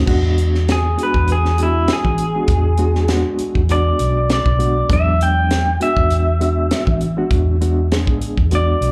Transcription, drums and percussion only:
0.07 kick loud
0.07 crash medium
0.38 closed hi-hat medium
0.55 snare soft
0.68 snare loud
0.68 closed hi-hat medium
0.98 closed hi-hat medium
1.14 kick medium
1.27 closed hi-hat medium
1.45 snare soft
1.58 closed hi-hat medium
1.88 snare loud
1.88 closed hi-hat medium
2.05 kick medium
2.18 closed hi-hat medium
2.48 kick loud
2.48 closed hi-hat medium
2.77 closed hi-hat medium
2.95 snare soft
3.08 snare loud
3.08 closed hi-hat medium
3.38 closed hi-hat medium
3.55 kick medium
3.69 closed hi-hat medium
3.99 closed hi-hat medium
4.29 snare loud
4.29 closed hi-hat medium
4.46 kick medium
4.60 closed hi-hat medium
4.90 kick loud
4.90 closed hi-hat medium
5.21 closed hi-hat medium
5.50 snare loud
5.50 closed hi-hat medium
5.81 closed hi-hat medium
5.97 kick medium
6.10 closed hi-hat medium
6.41 closed hi-hat medium
6.71 snare loud
6.71 closed hi-hat medium
6.87 kick medium
7.00 closed hi-hat medium
7.31 kick loud
7.31 closed hi-hat medium
7.61 closed hi-hat medium
7.91 snare loud
7.91 closed hi-hat medium
8.07 kick medium
8.21 closed hi-hat medium
8.38 kick medium
8.51 closed hi-hat medium
8.82 closed hi-hat medium

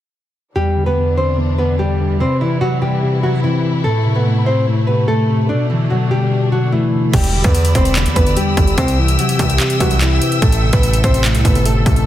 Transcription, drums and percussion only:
7.13 kick loud
7.13 closed hi-hat medium
7.13 crash loud
7.24 closed hi-hat medium
7.44 kick loud
7.44 closed hi-hat medium
7.55 closed hi-hat medium
7.65 closed hi-hat medium
7.75 kick medium
7.75 closed hi-hat medium
7.85 closed hi-hat medium
7.95 clap loud
7.95 closed hi-hat medium
8.06 closed hi-hat medium
8.16 kick medium
8.16 closed hi-hat medium
8.27 closed hi-hat medium
8.37 closed hi-hat medium
8.57 kick loud
8.57 closed hi-hat medium
8.67 closed hi-hat soft
8.78 kick loud
8.78 closed hi-hat medium
8.88 closed hi-hat medium
9.08 closed hi-hat medium
9.19 closed hi-hat medium
9.29 closed hi-hat medium
9.39 kick medium
9.39 closed hi-hat medium
9.50 closed hi-hat medium
9.60 clap loud
9.60 closed hi-hat medium
9.70 closed hi-hat medium
9.80 kick medium
9.80 closed hi-hat medium
9.91 closed hi-hat medium
10.01 clap loud
10.01 closed hi-hat medium
10.22 closed hi-hat medium
10.32 closed hi-hat soft
10.42 kick loud
10.42 closed hi-hat medium
10.52 closed hi-hat medium
10.73 kick loud
10.73 closed hi-hat medium
10.83 closed hi-hat medium
10.94 closed hi-hat medium
11.04 kick medium
11.04 closed hi-hat medium
11.14 closed hi-hat medium
11.24 clap loud
11.24 closed hi-hat medium
11.35 closed hi-hat medium
11.45 kick medium
11.45 closed hi-hat medium
11.55 closed hi-hat medium
11.66 closed hi-hat medium
11.86 kick loud
11.86 closed hi-hat medium
11.96 closed hi-hat soft

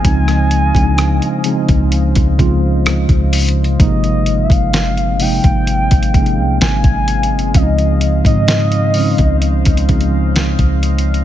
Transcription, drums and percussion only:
0.05 kick loud
0.05 closed hi-hat medium
0.28 cross-stick medium
0.28 closed hi-hat soft
0.51 closed hi-hat medium
0.75 kick loud
0.75 closed hi-hat medium
0.98 cross-stick loud
0.98 closed hi-hat medium
1.22 closed hi-hat soft
1.44 closed hi-hat medium
1.69 kick medium
1.69 closed hi-hat soft
1.92 closed hi-hat medium
2.15 kick loud
2.15 closed hi-hat medium
2.39 kick loud
2.39 closed hi-hat soft
2.86 cross-stick loud
2.86 closed hi-hat medium
3.09 kick medium
3.09 closed hi-hat soft
3.33 closed hi-hat medium
3.33 open hi-hat medium
3.49 closed hi-hat medium
3.64 closed hi-hat soft
3.80 kick loud
3.80 closed hi-hat medium
4.04 closed hi-hat soft
4.26 closed hi-hat medium
4.50 kick loud
4.50 closed hi-hat medium
4.73 snare loud
4.73 closed hi-hat medium
4.97 closed hi-hat soft
5.20 open hi-hat medium
5.44 kick medium
5.44 closed hi-hat soft
5.67 closed hi-hat medium
5.91 kick medium
5.91 closed hi-hat medium
6.03 closed hi-hat medium
6.14 kick loud
6.14 closed hi-hat soft
6.26 closed hi-hat soft
6.61 snare loud
6.61 closed hi-hat medium
6.84 kick medium
6.84 closed hi-hat soft
7.08 closed hi-hat medium
7.23 closed hi-hat medium
7.39 closed hi-hat soft
7.54 kick loud
7.54 closed hi-hat medium
7.78 closed hi-hat soft
8.01 closed hi-hat medium
8.25 kick medium
8.25 closed hi-hat medium
8.48 snare loud
8.48 closed hi-hat medium
8.72 closed hi-hat soft
8.94 open hi-hat medium
9.18 kick medium
9.18 closed hi-hat soft
9.42 closed hi-hat medium
9.65 kick loud
9.65 closed hi-hat medium
9.77 closed hi-hat medium
9.89 kick loud
9.89 closed hi-hat soft
10.01 closed hi-hat soft
10.36 snare loud
10.36 closed hi-hat medium
10.59 kick medium
10.59 closed hi-hat soft
10.83 closed hi-hat medium
10.98 closed hi-hat medium
11.14 closed hi-hat soft

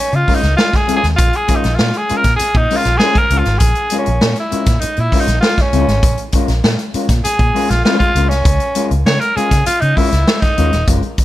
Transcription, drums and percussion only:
0.12 closed hi-hat soft
0.28 kick medium
0.28 open hi-hat medium
0.43 snare soft
0.43 closed hi-hat medium
0.58 snare loud
0.74 kick loud
0.74 snare soft
0.74 closed hi-hat soft
0.88 closed hi-hat medium
1.04 snare soft
1.04 closed hi-hat soft
1.18 kick loud
1.18 closed hi-hat loud
1.33 closed hi-hat soft
1.48 kick medium
1.48 closed hi-hat medium
1.64 snare soft
1.64 closed hi-hat soft
1.79 snare loud
1.94 closed hi-hat soft
2.09 closed hi-hat medium
2.24 kick loud
2.24 snare soft
2.24 closed hi-hat medium
2.39 closed hi-hat loud
2.54 kick loud
2.54 closed hi-hat soft
2.70 open hi-hat medium
2.85 snare soft
2.85 closed hi-hat medium
3.00 snare loud
3.15 kick loud
3.15 closed hi-hat soft
3.30 closed hi-hat medium
3.45 snare soft
3.45 closed hi-hat soft
3.60 kick loud
3.60 closed hi-hat loud
3.75 closed hi-hat soft
3.90 closed hi-hat medium
4.06 closed hi-hat soft
4.21 snare loud
4.36 closed hi-hat soft
4.52 closed hi-hat medium
4.66 kick loud
4.66 snare soft
4.66 closed hi-hat medium
4.81 closed hi-hat loud
4.96 closed hi-hat soft
5.12 kick medium
5.12 open hi-hat medium
5.28 snare soft
5.28 closed hi-hat medium
5.42 snare loud
5.58 kick medium
5.58 snare soft
5.58 closed hi-hat soft
5.73 closed hi-hat medium
5.88 snare soft
5.88 closed hi-hat soft
6.03 kick loud
6.03 closed hi-hat loud
6.17 closed hi-hat soft
6.32 kick medium
6.32 closed hi-hat medium
6.48 snare soft
6.48 closed hi-hat soft
6.64 snare loud
6.79 closed hi-hat soft
6.94 closed hi-hat medium
7.09 kick loud
7.09 snare soft
7.09 closed hi-hat medium
7.25 closed hi-hat medium
7.39 kick loud
7.39 closed hi-hat soft
7.56 open hi-hat medium
7.70 snare soft
7.70 closed hi-hat medium
7.85 snare loud
8.00 kick medium
8.00 closed hi-hat soft
8.16 closed hi-hat medium
8.31 snare soft
8.31 closed hi-hat soft
8.45 kick loud
8.45 closed hi-hat loud
8.60 closed hi-hat soft
8.75 closed hi-hat medium
8.91 closed hi-hat soft
9.06 snare loud
9.21 closed hi-hat soft
9.37 closed hi-hat medium
9.51 kick medium
9.51 snare soft
9.51 closed hi-hat medium
9.66 closed hi-hat loud
9.82 closed hi-hat soft
9.97 kick medium
9.97 open hi-hat medium
10.12 snare soft
10.12 closed hi-hat medium
10.27 snare loud
10.42 kick loud
10.42 snare soft
10.42 closed hi-hat soft
10.58 closed hi-hat medium
10.72 snare soft
10.72 closed hi-hat soft
10.87 kick loud
10.87 closed hi-hat loud
11.03 closed hi-hat soft
11.18 kick medium
11.18 closed hi-hat medium

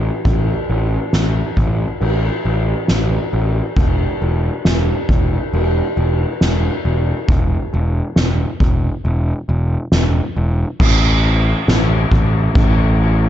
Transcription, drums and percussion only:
0.25 kick medium
0.25 ride medium
0.68 ride medium
1.13 snare medium
1.13 ride medium
1.56 kick medium
1.56 ride medium
2.00 ride medium
2.45 ride medium
2.88 snare medium
2.88 ride medium
3.32 ride medium
3.76 kick loud
3.76 ride medium
4.21 ride medium
4.65 snare loud
4.65 ride medium
5.09 kick medium
5.09 ride medium
5.53 ride medium
5.97 ride medium
6.41 snare loud
6.41 ride medium
6.85 ride medium
7.29 kick loud
8.16 snare loud
8.60 kick medium
9.92 snare loud
10.80 kick loud
10.80 crash loud
10.80 crash medium
11.24 crash medium
11.68 snare loud
11.68 crash medium
12.12 kick medium
12.12 crash medium
12.55 kick loud
12.55 crash medium
13.00 crash medium

